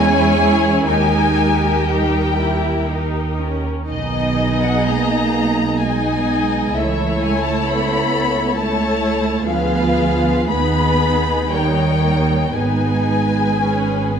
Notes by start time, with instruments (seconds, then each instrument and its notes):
Already playing: double bass section E2, cello section G#3, viola section C#4 E4, violin section G#4 C#5 G#5
0.85 double bass section D#2, cello section G#3, viola section D#4, violin section G4 A#4 G#5
1.86 cello section G3, viola section D#4, violin section G5
2.38 viola section E4
2.89 viola section D#4
3.40 viola section C#4
3.89 double bass section B1, cello section D#3, viola section B3 D#4, violin section G#4 D#5
4.63 cello section F#3, violin section F#5
4.86 cello section A#3, violin section A#5
5.81 cello section G#3, viola section B3 D#4, violin section G#4 D#5 G#5
6.75 double bass section C#2, cello section E3, viola section A3 E4, violin section A4 C#5 E5
7.21 cello section G#3, violin section G#5
7.43 cello section A3, violin section A5
7.65 cello section B3, violin section B5
8.57 cello section A3, viola section A3 E4, violin section A4 C#5 A5
9.46 double bass section D2, cello section F3, viola section B3 F4, violin section G#4 B4 F5
10.49 double bass section D#2, cello section B3, viola section B3 D#4, violin section G#4 B4 B5
11.50 cello section G3, viola section A#3 D#4, violin section A#4 C#5 G5
12.54 double bass section G#1, cello section G#3, viola section B3 D#4, violin section G#4 B4 G#5
13.59 viola section C#4
14.11 viola section B3